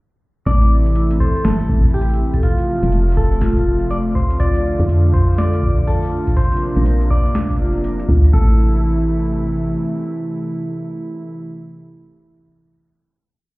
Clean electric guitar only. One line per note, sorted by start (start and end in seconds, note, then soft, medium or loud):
0.47 1.20 D5 loud
1.20 1.43 C5 loud
1.45 1.94 A4 loud
1.94 2.43 G4 loud
2.43 3.17 F4 loud
3.17 3.93 A4 loud
3.91 3.97 D5 loud
4.15 4.38 C5 loud
4.40 5.13 D5 loud
5.14 5.38 C5 medium
5.38 5.84 D5 loud
5.87 6.38 A4 loud
6.37 7.10 C5 loud
7.11 8.05 D5 medium
8.33 11.30 A4 medium